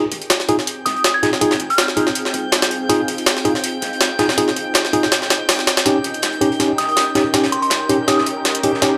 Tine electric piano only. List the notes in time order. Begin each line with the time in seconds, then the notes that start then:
0.49 D#4 F4 G#4
1.23 D#4 F4 G#4
1.41 D#4 F4 G#4
1.97 D#4 F4 G#4
2.89 D#4 F4 G#4
3.45 D#4 F4 G#4
4.19 D#4 F4 G#4
4.38 D#4 F4 G#4
4.93 D#4 F4 G#4
5.86 C#4 D#4 G4
6.41 C#4 D#4 G4
6.60 C#4 D#4 G4
7.15 C#4 D#4 G4
7.34 C#4 D#4 G4
7.89 C#4 D#4 G4
8.08 C#4 D#4 G4
8.64 C#4 D#4 G4
8.82 C#4 D#4 G4